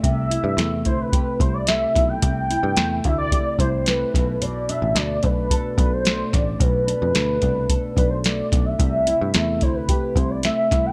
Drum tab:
HH |xxxxxxxx|xxxxxxxx|xxxxxxxx|xxxxxxxx|
SD |--o---oo|--o---oo|--o---oo|--o---oo|
BD |o--ooo-o|o--ooo-o|---ooo-o|o--ooo-o|

HH |xxxxxxxx|
SD |--o---oo|
BD |o--ooo-o|